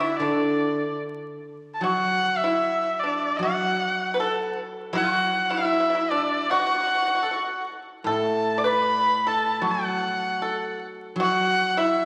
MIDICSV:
0, 0, Header, 1, 4, 480
1, 0, Start_track
1, 0, Tempo, 798935
1, 130, Time_signature, 2, 2, 24, 8
1, 2053, Tempo, 765306
1, 3973, Tempo, 789474
1, 5893, Tempo, 766284
1, 7405, End_track
2, 0, Start_track
2, 0, Title_t, "Erhu"
2, 0, Program_c, 0, 110
2, 0, Note_on_c, 0, 76, 74
2, 96, Note_on_c, 0, 74, 78
2, 105, Note_off_c, 0, 76, 0
2, 593, Note_off_c, 0, 74, 0
2, 1046, Note_on_c, 0, 81, 59
2, 1097, Note_on_c, 0, 78, 98
2, 1106, Note_off_c, 0, 81, 0
2, 1430, Note_on_c, 0, 76, 97
2, 1439, Note_off_c, 0, 78, 0
2, 1800, Note_on_c, 0, 74, 82
2, 1809, Note_off_c, 0, 76, 0
2, 2025, Note_on_c, 0, 78, 96
2, 2034, Note_off_c, 0, 74, 0
2, 2766, Note_off_c, 0, 78, 0
2, 3013, Note_on_c, 0, 78, 110
2, 3357, Note_on_c, 0, 76, 110
2, 3367, Note_off_c, 0, 78, 0
2, 3740, Note_on_c, 0, 74, 94
2, 3749, Note_off_c, 0, 76, 0
2, 3985, Note_on_c, 0, 78, 101
2, 3994, Note_off_c, 0, 74, 0
2, 4696, Note_off_c, 0, 78, 0
2, 4943, Note_on_c, 0, 81, 90
2, 5253, Note_on_c, 0, 86, 64
2, 5262, Note_off_c, 0, 81, 0
2, 5304, Note_on_c, 0, 83, 110
2, 5313, Note_off_c, 0, 86, 0
2, 5677, Note_on_c, 0, 81, 93
2, 5686, Note_off_c, 0, 83, 0
2, 5933, Note_on_c, 0, 78, 87
2, 5942, Note_off_c, 0, 81, 0
2, 6637, Note_off_c, 0, 78, 0
2, 6891, Note_on_c, 0, 78, 117
2, 7233, Note_on_c, 0, 76, 104
2, 7242, Note_off_c, 0, 78, 0
2, 7405, Note_off_c, 0, 76, 0
2, 7405, End_track
3, 0, Start_track
3, 0, Title_t, "Pipa"
3, 0, Program_c, 1, 105
3, 3, Note_on_c, 1, 64, 66
3, 116, Note_off_c, 1, 64, 0
3, 129, Note_on_c, 1, 62, 53
3, 585, Note_off_c, 1, 62, 0
3, 1103, Note_on_c, 1, 66, 65
3, 1439, Note_off_c, 1, 66, 0
3, 1464, Note_on_c, 1, 64, 60
3, 1795, Note_off_c, 1, 64, 0
3, 1823, Note_on_c, 1, 62, 58
3, 2041, Note_off_c, 1, 62, 0
3, 2059, Note_on_c, 1, 66, 75
3, 2477, Note_off_c, 1, 66, 0
3, 2506, Note_on_c, 1, 71, 55
3, 2540, Note_off_c, 1, 71, 0
3, 2543, Note_on_c, 1, 69, 75
3, 2765, Note_off_c, 1, 69, 0
3, 3003, Note_on_c, 1, 66, 84
3, 3341, Note_off_c, 1, 66, 0
3, 3362, Note_on_c, 1, 64, 75
3, 3398, Note_off_c, 1, 64, 0
3, 3406, Note_on_c, 1, 64, 48
3, 3442, Note_off_c, 1, 64, 0
3, 3450, Note_on_c, 1, 64, 63
3, 3496, Note_off_c, 1, 64, 0
3, 3503, Note_on_c, 1, 64, 54
3, 3540, Note_off_c, 1, 64, 0
3, 3547, Note_on_c, 1, 64, 60
3, 3592, Note_off_c, 1, 64, 0
3, 3609, Note_on_c, 1, 64, 53
3, 3632, Note_off_c, 1, 64, 0
3, 3640, Note_on_c, 1, 64, 64
3, 3683, Note_off_c, 1, 64, 0
3, 3742, Note_on_c, 1, 62, 66
3, 3963, Note_off_c, 1, 62, 0
3, 3991, Note_on_c, 1, 66, 82
3, 4025, Note_off_c, 1, 66, 0
3, 4043, Note_on_c, 1, 66, 54
3, 4073, Note_off_c, 1, 66, 0
3, 4087, Note_on_c, 1, 66, 55
3, 4117, Note_off_c, 1, 66, 0
3, 4134, Note_on_c, 1, 66, 46
3, 4162, Note_off_c, 1, 66, 0
3, 4169, Note_on_c, 1, 66, 52
3, 4202, Note_off_c, 1, 66, 0
3, 4211, Note_on_c, 1, 66, 47
3, 4246, Note_off_c, 1, 66, 0
3, 4261, Note_on_c, 1, 66, 51
3, 4293, Note_off_c, 1, 66, 0
3, 4303, Note_on_c, 1, 66, 49
3, 4330, Note_off_c, 1, 66, 0
3, 4337, Note_on_c, 1, 66, 52
3, 4373, Note_off_c, 1, 66, 0
3, 4380, Note_on_c, 1, 66, 44
3, 4420, Note_off_c, 1, 66, 0
3, 4428, Note_on_c, 1, 69, 45
3, 4460, Note_off_c, 1, 69, 0
3, 4479, Note_on_c, 1, 66, 57
3, 4689, Note_off_c, 1, 66, 0
3, 4938, Note_on_c, 1, 69, 79
3, 5231, Note_off_c, 1, 69, 0
3, 5250, Note_on_c, 1, 74, 61
3, 5285, Note_off_c, 1, 74, 0
3, 5287, Note_on_c, 1, 71, 70
3, 5629, Note_off_c, 1, 71, 0
3, 5668, Note_on_c, 1, 69, 75
3, 5881, Note_on_c, 1, 66, 66
3, 5885, Note_off_c, 1, 69, 0
3, 6347, Note_off_c, 1, 66, 0
3, 6384, Note_on_c, 1, 69, 57
3, 6603, Note_off_c, 1, 69, 0
3, 6872, Note_on_c, 1, 66, 90
3, 7198, Note_off_c, 1, 66, 0
3, 7231, Note_on_c, 1, 64, 73
3, 7405, Note_off_c, 1, 64, 0
3, 7405, End_track
4, 0, Start_track
4, 0, Title_t, "Guzheng"
4, 0, Program_c, 2, 107
4, 0, Note_on_c, 2, 50, 54
4, 110, Note_off_c, 2, 50, 0
4, 118, Note_on_c, 2, 50, 55
4, 1086, Note_on_c, 2, 54, 51
4, 1573, Note_off_c, 2, 50, 0
4, 2029, Note_off_c, 2, 54, 0
4, 2036, Note_on_c, 2, 54, 52
4, 2993, Note_off_c, 2, 54, 0
4, 3001, Note_on_c, 2, 54, 60
4, 4442, Note_off_c, 2, 54, 0
4, 4924, Note_on_c, 2, 45, 54
4, 5879, Note_on_c, 2, 54, 56
4, 6375, Note_off_c, 2, 45, 0
4, 6838, Note_off_c, 2, 54, 0
4, 6845, Note_on_c, 2, 54, 64
4, 7405, Note_off_c, 2, 54, 0
4, 7405, End_track
0, 0, End_of_file